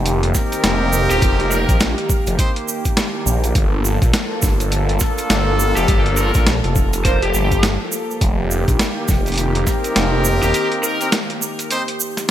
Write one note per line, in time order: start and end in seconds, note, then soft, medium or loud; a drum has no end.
0.00 0.33 F1 loud
0.00 3.51 D#3 medium
0.00 8.17 A#3 medium
0.00 3.51 G4 medium
0.06 closed hi-hat medium
0.06 shaker soft
0.23 closed hi-hat medium
0.34 1.65 C4 medium
0.34 1.65 D#4 medium
0.34 1.65 G4 medium
0.34 1.65 A#4 loud
0.34 kick medium
0.34 snare soft
0.34 shaker medium
0.52 closed hi-hat soft
0.52 shaker medium
0.64 1.08 F1 loud
0.64 snare loud
0.64 closed hi-hat medium
0.64 shaker soft
0.93 shaker medium
1.10 1.20 D#1 loud
1.10 1.34 G4 medium
1.10 closed hi-hat soft
1.10 shaker medium
1.22 1.66 F1 loud
1.22 kick loud
1.22 closed hi-hat medium
1.22 shaker soft
1.40 closed hi-hat soft
1.51 1.77 A#4 medium
1.51 shaker loud
1.69 1.95 A#1 loud
1.69 1.76 C4 medium
1.69 1.76 D#4 medium
1.69 1.76 G4 medium
1.69 1.76 A#4 medium
1.69 kick loud
1.69 closed hi-hat soft
1.69 shaker medium
1.80 snare loud
1.80 closed hi-hat medium
1.80 shaker soft
1.98 closed hi-hat soft
2.10 kick loud
2.10 shaker loud
2.27 2.37 F1 loud
2.27 closed hi-hat medium
2.27 shaker medium
2.38 2.50 C4 medium
2.38 2.50 D#4 medium
2.38 2.50 G4 medium
2.38 2.50 C5 loud
2.38 kick loud
2.38 closed hi-hat medium
2.38 shaker soft
2.56 closed hi-hat medium
2.68 shaker medium
2.85 kick medium
2.85 closed hi-hat soft
2.85 shaker medium
2.97 snare loud
2.97 closed hi-hat medium
2.97 shaker soft
3.26 3.53 A#1 loud
3.26 shaker medium
3.44 closed hi-hat soft
3.44 shaker medium
3.55 3.99 G1 medium
3.55 8.17 F3 medium
3.55 8.17 A4 medium
3.55 kick loud
3.55 closed hi-hat medium
3.55 shaker soft
3.85 shaker medium
4.02 4.12 A#1 medium
4.02 kick loud
4.02 closed hi-hat soft
4.02 shaker medium
4.14 snare loud
4.14 closed hi-hat medium
4.14 shaker soft
4.42 4.99 G1 loud
4.42 kick loud
4.42 snare soft
4.42 shaker loud
4.60 closed hi-hat medium
4.60 shaker medium
4.72 closed hi-hat medium
4.72 shaker soft
4.89 closed hi-hat soft
5.00 6.31 A#3 medium
5.00 6.31 D4 medium
5.00 6.31 F4 medium
5.00 6.31 A4 loud
5.00 kick medium
5.00 snare soft
5.00 shaker medium
5.18 closed hi-hat soft
5.18 shaker medium
5.30 5.74 G1 loud
5.30 snare loud
5.30 closed hi-hat medium
5.30 shaker soft
5.59 shaker medium
5.77 5.86 F1 loud
5.77 6.00 G4 medium
5.77 closed hi-hat soft
5.77 shaker medium
5.88 6.32 G1 loud
5.88 kick loud
5.88 closed hi-hat medium
5.88 shaker soft
6.06 closed hi-hat soft
6.17 6.43 A#4 medium
6.17 shaker medium
6.34 6.61 A#1 loud
6.34 6.42 A#3 medium
6.34 6.42 D4 medium
6.34 6.42 F4 medium
6.34 6.42 A4 medium
6.34 kick loud
6.34 closed hi-hat soft
6.34 shaker medium
6.47 snare loud
6.47 closed hi-hat medium
6.47 shaker soft
6.64 7.19 F1 loud
6.64 closed hi-hat soft
6.76 kick loud
6.76 shaker medium
6.93 closed hi-hat medium
6.93 shaker medium
7.05 7.16 A#3 medium
7.05 7.16 D4 medium
7.05 7.16 F4 medium
7.05 7.16 A#4 loud
7.05 7.19 C5 medium
7.05 kick loud
7.05 closed hi-hat medium
7.05 shaker soft
7.22 7.32 F1 loud
7.22 7.63 G4 medium
7.22 closed hi-hat soft
7.34 7.78 G1 loud
7.34 shaker medium
7.52 kick medium
7.52 closed hi-hat soft
7.52 shaker medium
7.63 snare loud
7.63 closed hi-hat medium
7.63 shaker soft
7.92 shaker medium
8.11 shaker soft
8.21 8.65 F1 medium
8.21 12.31 D#3 medium
8.21 12.31 A#3 medium
8.21 12.31 G4 medium
8.21 kick loud
8.21 closed hi-hat medium
8.21 shaker soft
8.51 shaker medium
8.68 8.78 A#1 loud
8.68 kick loud
8.68 closed hi-hat soft
8.68 shaker medium
8.79 snare loud
8.79 closed hi-hat medium
8.79 shaker soft
9.08 9.65 F1 medium
9.08 kick loud
9.08 snare soft
9.08 shaker medium
9.26 closed hi-hat soft
9.26 shaker soft
9.28 closed hi-hat soft
9.32 closed hi-hat soft
9.34 closed hi-hat soft
9.36 closed hi-hat soft
9.38 closed hi-hat medium
9.38 shaker soft
9.55 closed hi-hat medium
9.67 10.97 C4 medium
9.67 10.97 D#4 medium
9.67 10.97 G4 medium
9.67 10.97 A#4 loud
9.67 kick medium
9.67 snare medium
9.67 shaker medium
9.84 closed hi-hat soft
9.84 shaker soft
9.96 10.40 F1 loud
9.96 snare loud
9.96 closed hi-hat medium
9.96 shaker soft
10.24 shaker medium
10.43 10.52 D#1 loud
10.43 10.66 G4 medium
10.43 closed hi-hat soft
10.43 shaker soft
10.54 closed hi-hat medium
10.54 shaker soft
10.72 closed hi-hat soft
10.83 11.09 A#4 medium
10.83 shaker loud
11.01 11.08 C4 medium
11.01 11.08 D#4 medium
11.01 11.08 G4 medium
11.01 11.08 A#4 medium
11.01 closed hi-hat soft
11.01 shaker soft
11.12 snare loud
11.12 closed hi-hat medium
11.12 shaker soft
11.30 closed hi-hat soft
11.42 shaker loud
11.59 closed hi-hat medium
11.59 shaker medium
11.71 11.82 C4 medium
11.71 11.82 D#4 medium
11.71 11.82 G4 medium
11.71 11.82 C5 loud
11.71 closed hi-hat medium
11.71 shaker soft
11.88 closed hi-hat medium
12.00 shaker loud
12.17 snare soft
12.17 closed hi-hat soft
12.17 shaker medium